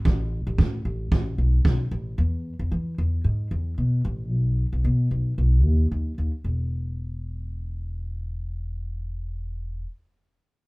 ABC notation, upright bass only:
X:1
M:4/4
L:1/16
Q:"Swing 16ths" 1/4=112
K:Bmix
V:1 name="Upright bass" clef=bass
A,,,3 A,,, A,,2 A,,,2 A,,,2 B,,,2 B,,,2 A,,,2 | E,,3 E,, E,2 E,,2 G,,2 E,,2 B,,2 A,,,2 | B,,,3 B,,, B,,2 B,,,2 B,,,2 D,,2 D,,2 D,, z | E,,,16- |
E,,,16 |]